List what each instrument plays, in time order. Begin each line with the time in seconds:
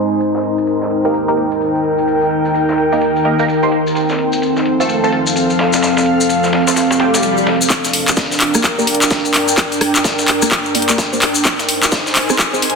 Already playing: ambient pad G#3 G#4 C5 D#5, analog synth pad D#4 C5 G#5
0.20 ambient pad D#3 D#4 A#4 G5, closed hi-hat, maracas
0.35 analog synth pad A#4, snare, maracas
0.44 closed hi-hat
0.58 maracas
0.67 analog synth pad G5, closed hi-hat, maracas
0.82 snare, maracas
0.91 closed hi-hat
1.05 synth stab A#3 D#4 G4 A#4, closed hi-hat, maracas
1.14 closed hi-hat, maracas
1.28 synth stab A#3 D#4 G4 A#4, maracas
1.37 closed hi-hat
1.51 closed hi-hat, maracas
1.61 closed hi-hat, maracas
1.75 closed hi-hat, maracas
1.84 closed hi-hat
1.98 maracas
2.08 closed hi-hat, maracas
2.21 closed hi-hat, maracas
2.31 closed hi-hat
2.45 maracas
2.55 closed hi-hat, maracas
2.69 snare, maracas
2.78 closed hi-hat
2.92 synth stab A#3 D#4 G4 A#4, closed hi-hat, maracas
3.01 closed hi-hat, maracas
3.16 maracas
3.25 synth stab A#3 D#4 G4 A#4, closed hi-hat
3.39 synth stab A#3 D#4 G4 A#4, maracas
3.48 closed hi-hat, maracas
3.63 synth stab A#3 D#4 G4 C5, maracas
3.72 closed hi-hat
3.87 maracas
3.95 ambient pad F3 C4 A4 F5, analog synth pad C4, closed hi-hat, maracas
4.09 snare, maracas
4.19 closed hi-hat
4.33 analog synth pad A4, maracas
4.42 closed hi-hat, maracas
4.56 snare, maracas
4.66 closed hi-hat
4.73 analog synth pad F5
4.80 synth stab A3 C4 F4 A4, closed hi-hat, maracas
4.89 closed hi-hat, maracas
5.04 synth stab A3 C4 F4 A4, maracas
5.12 closed hi-hat
5.27 closed hi-hat, maracas
5.36 closed hi-hat, maracas
5.50 closed hi-hat, maracas
5.59 snare, closed hi-hat
5.73 snare, closed hi-hat, maracas
5.83 ambient pad D#5, snare, closed hi-hat, maracas
5.97 snare, closed hi-hat, maracas
6.06 closed hi-hat
6.21 maracas
6.29 closed hi-hat, maracas
6.43 snare, maracas
6.53 snare, closed hi-hat
6.67 synth stab A3 C4 F4 A4, snare, closed hi-hat, maracas
6.76 snare, closed hi-hat, swell, maracas
6.91 snare, closed hi-hat, maracas
7.00 synth stab A3 C4 F4 G4, snare, closed hi-hat
7.14 snare, closed hi-hat, maracas
7.23 closed hi-hat, maracas
7.37 maracas
7.47 snare, closed hi-hat
7.62 maracas
7.70 ambient pad G3 G4 A#4 D5, analog synth pad D4, kick, clap, closed hi-hat, maracas
7.84 snare, closed hi-hat, maracas
7.92 analog synth pad A#4, closed hi-hat, open hi-hat
8.08 clap, closed hi-hat, maracas
8.13 analog synth pad G5, snare, closed hi-hat, maracas
8.17 kick
8.31 snare, maracas
8.40 clap, closed hi-hat, open hi-hat
8.54 synth stab A#3 D4 G4 A#4, cross-stick, closed hi-hat, maracas
8.64 kick, clap, closed hi-hat, maracas
8.78 synth stab A#3 D4 G4 A#4, maracas
8.87 closed hi-hat, open hi-hat
8.95 closed hi-hat
9.02 clap, closed hi-hat, maracas
9.10 kick, snare, closed hi-hat, maracas
9.25 closed hi-hat, maracas
9.34 clap, closed hi-hat, open hi-hat
9.48 closed hi-hat, maracas
9.58 kick, clap, closed hi-hat, maracas
9.72 closed hi-hat, maracas
9.81 cross-stick, closed hi-hat, open hi-hat
9.95 clap, closed hi-hat, maracas
10.04 kick, snare, closed hi-hat, maracas
10.19 snare, maracas
10.28 clap, closed hi-hat, open hi-hat
10.42 synth stab A#3 D4 G4 A#4, cross-stick, closed hi-hat, maracas
10.51 kick, clap, closed hi-hat, maracas
10.66 maracas
10.75 synth stab A#3 D4 G4 A#4, closed hi-hat, open hi-hat
10.82 closed hi-hat
10.89 synth stab A#3 D4 G4 A#4, clap, closed hi-hat, maracas
10.98 kick, snare, closed hi-hat, maracas
11.13 synth stab A#3 D4 G4 C5, maracas
11.22 clap, closed hi-hat, open hi-hat
11.35 closed hi-hat, maracas
11.45 ambient pad G#3 G#4, analog synth pad D#4, kick, clap, closed hi-hat, maracas
11.54 analog synth pad C5
11.59 snare, closed hi-hat, maracas
11.68 analog synth pad G#5, closed hi-hat, open hi-hat
11.83 clap, closed hi-hat, maracas
11.92 kick, snare, closed hi-hat, maracas
12.06 snare, maracas
12.15 clap, closed hi-hat, open hi-hat
12.29 synth stab C4 D#4 G#4 C5, cross-stick, closed hi-hat, maracas
12.39 kick, clap, closed hi-hat, maracas
12.53 synth stab C4 D#4 G#4 C5, maracas
12.62 closed hi-hat, open hi-hat
12.70 closed hi-hat